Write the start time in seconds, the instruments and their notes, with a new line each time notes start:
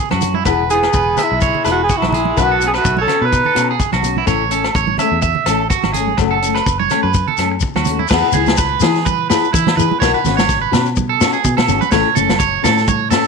0.11 fingered electric bass F#2, clean electric guitar F#4, cross-stick, high conga, low agogo
0.21 steel-string acoustic guitar C#4 F#4, closed hi-hat, low conga, shekere
0.34 clean electric guitar E4, high conga
0.45 fingered electric bass E1, steel-string acoustic guitar E3 B3 E4 G#4, clean electric guitar B4, kick, cross-stick, low agogo, shekere
0.69 steel-string acoustic guitar B3 E4 G#4, trumpet B3, clean electric guitar G#4, alto saxophone G#4, closed hi-hat, shekere
0.83 cross-stick, low agogo
0.93 fingered electric bass E1, clean electric guitar B4, kick, shekere
1.16 steel-string acoustic guitar B3 G#4, clean electric guitar E5, muted steel-string acoustic guitar stroke, cross-stick, closed hi-hat, low conga, low agogo, shekere
1.23 trumpet G#3, alto saxophone E4
1.31 fingered electric bass B1
1.41 clean electric guitar C#5, kick, shekere
1.55 low conga
1.64 fingered electric bass E1, steel-string acoustic guitar B3 E4 G#4, clean electric guitar B4, cross-stick, closed hi-hat, low agogo, shekere
1.70 trumpet A3, alto saxophone F#4
1.83 trumpet B3, alto saxophone G#4
1.89 trumpet G#3, clean electric guitar F#4, kick, shekere
1.97 alto saxophone E4
2.02 fingered electric bass A#1, cross-stick, high conga, low agogo
2.08 trumpet G#3, alto saxophone E4
2.12 steel-string acoustic guitar E4 G#4, clean electric guitar G#4, closed hi-hat, low conga
2.17 steel-string acoustic guitar B3
2.25 high conga
2.36 fingered electric bass B1, steel-string acoustic guitar D#3 B3 C#4 F#4, clean electric guitar B4, kick, cross-stick, low agogo, shekere
2.43 trumpet B3, alto saxophone F#4
2.51 clean electric guitar A4
2.59 steel-string acoustic guitar C#4 F#4, closed hi-hat, shekere
2.64 steel-string acoustic guitar B3, trumpet B3, alto saxophone G#4
2.74 alto saxophone F#4, clean electric guitar B4, cross-stick, low agogo
2.80 trumpet A3
2.85 fingered electric bass B1, kick, shekere
2.97 clean electric guitar C#5, high conga
3.01 trumpet C#4, alto saxophone A4
3.07 steel-string acoustic guitar B3 C#4 F#4, cross-stick, closed hi-hat, low conga, low agogo
3.21 fingered electric bass B2, clean electric guitar B4, alto saxophone B4
3.26 trumpet D#4
3.33 kick, shekere
3.45 clean electric guitar A4, low conga
3.55 fingered electric bass B2, steel-string acoustic guitar B3 C#4 F#4, cross-stick, closed hi-hat, low agogo, shekere
3.71 clean electric guitar G#4
3.80 kick, shekere
3.92 fingered electric bass B1, clean electric guitar F#4, cross-stick, high conga, low agogo
4.02 steel-string acoustic guitar B3 C#4, muted steel-string acoustic guitar stroke, closed hi-hat, low conga, shekere
4.17 clean electric guitar E4, high conga
4.26 fingered electric bass A1, steel-string acoustic guitar E3 A3 C#4, clean electric guitar C#5, kick, cross-stick, low agogo, shekere
4.51 steel-string acoustic guitar A3 C#4, clean electric guitar A4, closed hi-hat, shekere
4.64 cross-stick, low agogo
4.75 fingered electric bass A1, clean electric guitar C#5, kick, shekere
4.87 high conga
4.98 steel-string acoustic guitar C#4, clean electric guitar E5, cross-stick, closed hi-hat, low conga, low agogo, shekere
5.02 steel-string acoustic guitar A3
5.11 fingered electric bass E2
5.22 clean electric guitar E5, kick, shekere
5.35 low conga
5.46 fingered electric bass A1, steel-string acoustic guitar A3 C#4, clean electric guitar A4, cross-stick, closed hi-hat, low agogo, shekere
5.70 clean electric guitar F#4, kick, shekere
5.83 fingered electric bass G#1, cross-stick, high conga, low agogo
5.93 steel-string acoustic guitar C#4, clean electric guitar G#4, closed hi-hat, low conga, shekere
5.99 steel-string acoustic guitar A3
6.07 high conga
6.17 fingered electric bass F#1, steel-string acoustic guitar F#3 A3, muted clean electric guitar stroke, kick, cross-stick, low agogo, shekere
6.22 steel-string acoustic guitar C#4
6.31 clean electric guitar A4
6.42 steel-string acoustic guitar A3 C#4, closed hi-hat, shekere
6.55 clean electric guitar B4, cross-stick, low agogo
6.66 fingered electric bass F#1, kick, shekere
6.79 clean electric guitar C#5, high conga
6.90 steel-string acoustic guitar A3 C#4, cross-stick, closed hi-hat, low conga, low agogo, shekere
7.03 fingered electric bass F#2, clean electric guitar B4
7.14 kick, shekere
7.27 clean electric guitar A4, low conga
7.37 fingered electric bass F#2, steel-string acoustic guitar C#4, cross-stick, closed hi-hat, low agogo, shekere
7.43 steel-string acoustic guitar A3
7.51 muted clean electric guitar stroke
7.60 kick, shekere
7.76 fingered electric bass D#2, clean electric guitar F#4, cross-stick, high conga, low agogo
7.85 steel-string acoustic guitar C#4, closed hi-hat, high conga, low conga, shekere
7.91 steel-string acoustic guitar A3
7.99 clean electric guitar E4, high conga
8.08 fingered electric bass E2, steel-string acoustic guitar E3 B3, clean electric guitar B4, kick, snare, crash, low agogo, shekere
8.13 steel-string acoustic guitar E4 G#4
8.32 fingered electric bass C#2, clean electric guitar G#4, steel-string acoustic guitar G#4, low conga, shekere
8.37 steel-string acoustic guitar B3 E4
8.46 snare, high conga, low agogo, shekere
8.57 clean electric guitar B4, kick, snare, shekere
8.80 fingered electric bass E3, clean electric guitar G#4, steel-string acoustic guitar G#4, snare, low conga, low agogo, shekere
8.84 steel-string acoustic guitar B3 E4
8.95 snare, shekere
9.05 clean electric guitar B4, kick, high conga, shekere
9.30 steel-string acoustic guitar B3 E4 G#4, clean electric guitar B4, snare, low agogo, shekere
9.44 shekere
9.53 fingered electric bass E3, clean electric guitar E4, kick, low conga, shekere
9.67 snare, high conga, low agogo
9.77 fingered electric bass E3, steel-string acoustic guitar B3 E4 G#4, clean electric guitar B4, low conga, shekere
9.91 high conga
10.00 fingered electric bass B1, steel-string acoustic guitar D#3 B3, clean electric guitar C#5, muted steel-string acoustic guitar stroke, kick, snare, low agogo, shekere
10.04 steel-string acoustic guitar F#4
10.14 clean electric guitar B4
10.24 fingered electric bass G#1, steel-string acoustic guitar B3 C#4 F#4, snare, low conga, shekere
10.37 clean electric guitar C#5, snare, high conga, low agogo, shekere
10.49 kick, snare, shekere
10.62 clean electric guitar B4
10.72 fingered electric bass B2, steel-string acoustic guitar C#4 F#4, muted steel-string acoustic guitar stroke, snare, low conga, low agogo, shekere
10.86 shekere
10.96 kick, high conga, shekere
11.09 clean electric guitar A4
11.21 steel-string acoustic guitar B3 C#4 F#4, snare, low agogo, shekere
11.33 clean electric guitar G#4, shekere
11.44 fingered electric bass B2, kick, low conga, shekere
11.57 clean electric guitar A4, snare, high conga, low agogo
11.68 fingered electric bass G#1, steel-string acoustic guitar B3 C#4 F#4, low conga, shekere
11.81 clean electric guitar B4, high conga, shekere
11.92 fingered electric bass A1, steel-string acoustic guitar E3 A3 C#4, clean electric guitar C#5, kick, snare, low agogo, shekere
12.15 fingered electric bass F#1, steel-string acoustic guitar C#4, clean electric guitar A4, low conga, shekere
12.19 steel-string acoustic guitar A3
12.29 snare, high conga, low agogo, shekere
12.39 clean electric guitar C#5, kick, shekere
12.63 fingered electric bass A2, steel-string acoustic guitar A3 C#4, clean electric guitar A4, snare, low conga, low agogo, shekere
12.78 snare, shekere
12.88 clean electric guitar C#5, kick, high conga, shekere
13.10 steel-string acoustic guitar A3 C#4, clean electric guitar A4, snare, low agogo, shekere